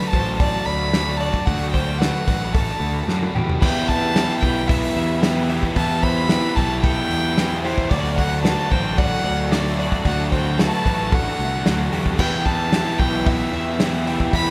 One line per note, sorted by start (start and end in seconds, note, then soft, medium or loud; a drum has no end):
0.00 0.91 D3 medium
0.00 0.92 F#3 medium
0.00 0.14 A3 medium
0.00 0.13 D4 medium
0.00 0.12 F#4 medium
0.00 3.58 F#4 medium
0.00 3.58 A4 medium
0.00 0.13 B4 medium
0.00 0.13 D5 loud
0.00 3.58 D5 medium
0.00 1.43 A5 medium
0.00 snare soft
0.11 0.55 A1 loud
0.11 0.92 A3 medium
0.11 0.93 D4 medium
0.11 0.93 F#4 medium
0.11 0.40 C5 medium
0.11 0.37 A5 loud
0.11 kick loud
0.11 open hi-hat medium
0.38 0.65 D5 medium
0.38 0.67 A5 loud
0.38 kick loud
0.38 open hi-hat medium
0.66 1.29 D2 loud
0.66 1.19 D5 medium
0.66 1.18 B5 loud
0.66 open hi-hat medium
0.92 1.44 D3 loud
0.92 1.45 F#3 loud
0.92 1.20 A3 loud
0.92 1.19 D4 loud
0.92 1.17 F#4 loud
0.92 snare loud
0.92 open hi-hat medium
1.17 1.47 D4 medium
1.17 1.47 F#4 medium
1.17 1.73 D5 medium
1.17 1.47 A5 loud
1.17 open hi-hat medium
1.21 1.46 A3 medium
1.34 kick medium
1.46 2.10 D2 loud
1.46 2.27 D3 medium
1.46 1.99 F#3 loud
1.46 2.00 A3 loud
1.46 2.01 D4 loud
1.46 2.01 F#4 loud
1.46 1.71 F#5 loud
1.46 7.87 B5 medium
1.46 kick loud
1.46 open hi-hat loud
1.72 2.00 C5 medium
1.72 2.00 G5 medium
1.72 kick medium
1.72 open hi-hat medium
1.98 2.54 F#3 medium
1.98 2.29 A3 medium
1.98 2.27 D4 medium
1.98 2.26 B4 medium
1.98 2.55 F#5 medium
1.98 snare loud
1.98 open hi-hat medium
2.02 2.26 F#4 loud
2.15 snare soft
2.27 2.69 A1 loud
2.27 3.07 A3 medium
2.27 3.08 D4 medium
2.27 3.08 F#4 medium
2.27 2.54 B4 medium
2.27 kick loud
2.27 open hi-hat medium
2.54 3.08 A4 medium
2.54 3.08 A5 loud
2.54 kick loud
2.54 open hi-hat medium
2.80 3.01 D2 medium
2.80 open hi-hat medium
3.07 3.32 F#2 medium
3.07 3.60 D3 loud
3.07 3.60 F#3 loud
3.07 3.35 A3 loud
3.07 3.34 D4 loud
3.07 3.32 F#4 loud
3.07 snare medium
3.23 high tom medium
3.34 3.59 E2 medium
3.34 3.61 A3 medium
3.34 3.60 D4 medium
3.34 3.60 F#4 medium
3.34 3.62 G4 medium
3.34 mid tom loud
3.49 floor tom loud
3.60 4.25 E2 loud
3.60 4.14 E3 medium
3.60 4.15 B3 medium
3.60 4.15 E4 loud
3.60 7.87 G4 medium
3.60 4.17 G4 loud
3.60 4.42 B4 loud
3.60 7.87 B4 medium
3.60 5.74 E5 medium
3.60 3.90 G5 loud
3.60 kick loud
3.60 crash loud
3.60 splash medium
3.88 4.15 B3 medium
3.88 4.16 E4 medium
3.88 4.17 G4 medium
3.88 4.40 A5 loud
3.88 kick medium
3.88 open hi-hat medium
4.14 5.21 E3 medium
4.14 4.43 B3 medium
4.14 4.42 E4 medium
4.14 6.87 G4 medium
4.14 4.41 G4 medium
4.14 snare loud
4.14 open hi-hat medium
4.30 snare soft
4.40 4.84 B1 loud
4.40 5.21 B3 medium
4.40 5.22 E4 medium
4.40 5.23 G4 medium
4.40 6.06 B4 medium
4.40 4.69 G5 loud
4.40 kick medium
4.40 open hi-hat medium
4.68 5.49 E5 medium
4.68 4.95 E5 medium
4.68 kick loud
4.68 open hi-hat loud
4.96 5.58 E2 loud
4.96 5.48 E5 medium
4.96 open hi-hat medium
5.22 5.74 E3 loud
5.22 5.50 B3 loud
5.22 5.49 E4 loud
5.22 5.48 G4 loud
5.22 snare loud
5.22 open hi-hat medium
5.49 5.75 B3 medium
5.49 5.76 E4 medium
5.49 5.76 G4 medium
5.49 6.03 E5 medium
5.49 open hi-hat medium
5.63 kick medium
5.75 6.39 E2 loud
5.75 6.28 E3 medium
5.75 6.29 B3 medium
5.75 6.30 E4 medium
5.75 6.31 G4 loud
5.75 12.15 D5 medium
5.75 6.04 A5 loud
5.75 kick loud
5.75 open hi-hat loud
6.02 6.28 B3 medium
6.02 6.29 E4 medium
6.02 6.29 G4 medium
6.02 6.30 C5 medium
6.02 6.57 B5 loud
6.02 kick medium
6.02 open hi-hat medium
6.29 6.83 E3 medium
6.29 6.58 B3 medium
6.29 6.57 E4 medium
6.29 6.55 G4 medium
6.29 6.55 B4 medium
6.29 snare loud
6.29 open hi-hat medium
6.44 snare soft
6.55 6.99 B1 loud
6.55 7.37 B3 medium
6.55 7.38 E4 medium
6.55 7.38 G4 medium
6.55 6.84 B4 medium
6.55 6.81 A5 loud
6.55 kick medium
6.55 open hi-hat medium
6.82 7.37 A4 medium
6.82 7.59 G5 loud
6.82 kick loud
6.82 open hi-hat medium
7.10 7.73 E2 loud
7.10 open hi-hat medium
7.37 7.89 E3 loud
7.37 7.65 B3 loud
7.37 7.64 E4 loud
7.37 7.62 G4 loud
7.37 snare loud
7.37 open hi-hat medium
7.63 7.91 B3 medium
7.63 7.90 E4 medium
7.63 7.89 G4 medium
7.63 7.91 G4 medium
7.63 7.91 C5 medium
7.63 open hi-hat medium
7.78 kick medium
7.89 8.54 D2 loud
7.89 9.50 D3 medium
7.89 8.43 F#3 loud
7.89 8.44 A3 loud
7.89 8.45 D4 loud
7.89 12.16 F#4 medium
7.89 8.46 F#4 loud
7.89 12.16 A4 medium
7.89 8.17 D5 loud
7.89 8.71 D5 loud
7.89 12.15 A5 medium
7.89 kick loud
7.89 open hi-hat loud
8.18 8.45 A3 medium
8.18 8.45 D4 medium
8.18 8.47 F#4 medium
8.18 8.43 F#5 loud
8.18 kick medium
8.18 open hi-hat medium
8.44 10.04 D3 loud
8.44 9.51 F#3 medium
8.44 8.72 A3 medium
8.44 8.71 D4 medium
8.44 8.70 F#4 medium
8.44 8.72 B4 medium
8.44 8.73 A5 loud
8.44 snare loud
8.44 open hi-hat medium
8.59 snare soft
8.70 9.13 A1 loud
8.70 9.51 A3 medium
8.70 9.51 D4 medium
8.70 9.52 F#4 medium
8.70 8.98 C5 medium
8.70 8.99 G5 loud
8.70 kick medium
8.70 open hi-hat medium
8.98 9.24 D5 medium
8.98 9.53 F#5 loud
8.98 kick loud
8.98 open hi-hat loud
9.24 9.87 D2 loud
9.24 9.78 D5 medium
9.24 open hi-hat medium
9.50 10.03 D3 loud
9.50 10.03 F#3 loud
9.50 9.79 A3 loud
9.50 9.77 D4 loud
9.50 9.76 F#4 loud
9.50 9.92 D5 loud
9.50 snare loud
9.50 open hi-hat loud
9.77 10.04 A3 medium
9.77 10.05 D4 medium
9.77 10.05 F#4 medium
9.77 10.31 D5 medium
9.77 open hi-hat medium
9.92 kick medium
10.04 10.68 D2 loud
10.04 10.85 D3 medium
10.04 10.56 F#3 medium
10.04 10.57 A3 medium
10.04 10.58 D4 medium
10.04 10.59 F#4 loud
10.04 10.30 F#5 loud
10.04 kick loud
10.04 open hi-hat loud
10.31 10.57 A3 medium
10.31 10.58 D4 medium
10.31 10.59 F#4 medium
10.31 10.59 C5 medium
10.31 10.62 G5 medium
10.31 kick medium
10.31 open hi-hat medium
10.57 11.12 D3 medium
10.57 11.12 F#3 medium
10.57 10.86 A3 medium
10.57 10.85 D4 medium
10.57 10.83 F#4 medium
10.57 10.84 B4 medium
10.57 11.15 A5 loud
10.57 snare loud
10.57 open hi-hat medium
10.73 snare soft
10.84 11.27 A1 loud
10.84 11.64 A3 medium
10.84 11.65 D4 medium
10.84 11.65 F#4 medium
10.84 11.12 B4 medium
10.84 kick medium
10.84 open hi-hat medium
11.12 11.66 A4 medium
11.12 11.93 F#5 loud
11.12 kick loud
11.12 open hi-hat medium
11.39 11.63 C2 medium
11.39 open hi-hat medium
11.63 11.90 D2 medium
11.63 12.17 D3 loud
11.63 12.17 F#3 loud
11.63 11.93 A3 loud
11.63 11.92 D4 loud
11.63 11.90 F#4 loud
11.63 snare loud
11.63 open hi-hat medium
11.91 12.17 E2 medium
11.91 12.18 A3 medium
11.91 12.18 D4 medium
11.91 12.17 F#4 medium
11.91 12.19 G4 medium
11.91 open hi-hat medium
12.06 kick medium
12.18 12.81 E2 loud
12.18 12.71 E3 medium
12.18 12.72 B3 medium
12.18 12.73 E4 loud
12.18 14.50 E4 medium
12.18 12.74 G4 loud
12.18 14.50 G4 medium
12.18 13.00 B4 medium
12.18 14.32 B4 medium
12.18 12.47 G5 loud
12.18 14.50 G5 medium
12.18 kick loud
12.18 crash loud
12.46 12.72 B3 medium
12.46 12.73 E4 medium
12.46 12.73 G4 medium
12.46 13.00 A5 loud
12.46 kick medium
12.46 open hi-hat medium
12.72 13.78 E3 medium
12.72 13.01 B3 medium
12.72 13.00 E4 medium
12.72 14.50 G4 medium
12.72 12.98 G4 medium
12.72 snare loud
12.72 open hi-hat medium
12.86 snare soft
12.98 13.41 B1 loud
12.98 13.78 B3 medium
12.98 13.79 E4 medium
12.98 13.80 G4 medium
12.98 14.50 B4 medium
12.98 13.30 G5 loud
12.98 kick loud
12.98 open hi-hat medium
13.26 13.52 E5 loud
13.26 14.07 E5 medium
13.26 kick loud
13.26 open hi-hat loud
13.52 14.15 E2 loud
13.52 14.05 E5 medium
13.52 open hi-hat medium
13.78 14.31 E3 loud
13.78 14.07 B3 loud
13.78 14.06 E4 loud
13.78 14.05 G4 loud
13.78 snare loud
13.78 open hi-hat loud
14.06 14.32 B3 medium
14.06 14.33 E4 medium
14.06 14.34 G4 medium
14.06 14.50 E5 medium
14.06 open hi-hat medium
14.20 kick medium
14.32 14.50 E2 loud
14.32 14.50 E3 medium
14.32 14.50 B3 loud
14.32 14.50 E4 loud
14.32 14.50 G4 medium
14.32 14.50 A4 medium
14.32 14.50 B5 loud
14.32 kick loud
14.32 open hi-hat loud